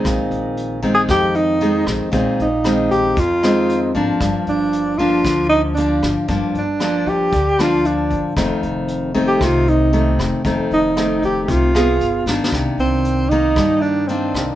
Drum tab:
HH |x--x--x--x--x--x--x--x--|x--x--x--x--x--x--x--x--|x--x--x--x--x--x--x--x--|x--x--x--x--x--x--x--x--|
SD |r-----------r--------r--|------r--------r--------|r-----------r--------r--|------r--------r--------|
BD |o--------o--o--------o--|o--------o--o--------o--|o--------o--o--------o--|o--------o--o--------o--|

HH |x--x--x--x--x--x--x--x--|x--x--x--x--x--x--x-----|x--x--x--x--x--x--x--x--|
SD |r-----------r--------r--|------r--------r-----o-o|r-----------r--------r--|
BD |o--------o--o--------o--|o--------o--o-----------|o--------o--o--------o--|